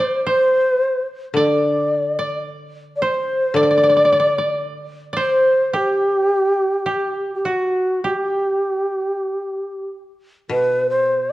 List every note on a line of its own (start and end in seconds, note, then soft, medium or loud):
0.00 0.22 C3 medium
0.00 0.24 C5 medium
0.00 0.26 C5 medium
0.00 1.36 D5 medium
0.26 1.03 C5 loud
0.26 1.98 C5 medium
1.34 3.53 D3 medium
1.34 2.18 D5 medium
1.34 2.42 D5 medium
2.19 3.56 D5 medium
2.96 3.04 D5 medium
3.02 4.73 C5 medium
3.02 3.57 C5 medium
3.54 6.85 D3 medium
3.54 4.63 D5 loud
3.54 3.62 D5 medium
3.63 3.70 D5 soft
3.71 3.77 D5 medium
3.78 3.83 D5 soft
3.83 3.89 D5 medium
3.89 3.96 D5 soft
3.97 4.04 D5 soft
4.05 4.12 D5 soft
4.12 4.19 D5 medium
4.20 4.38 D5 medium
4.38 5.12 D5 medium
5.13 6.88 C5 medium
5.13 6.73 D5 medium
5.19 5.77 C5 medium
5.73 6.86 G4 medium
5.73 7.34 G4 medium
6.86 7.51 G4 medium
7.35 7.48 G4 medium
7.45 8.10 F#4 medium
7.45 8.04 F#4 medium
8.04 8.16 F#4 medium
8.04 8.69 G4 medium
8.16 9.88 G4 medium
8.69 8.87 G#4 medium
8.87 9.06 G4 medium
9.06 9.24 G#4 medium
9.24 10.08 G4 medium
10.49 11.32 B2 soft
10.49 10.88 B4 medium
10.90 11.31 C5 medium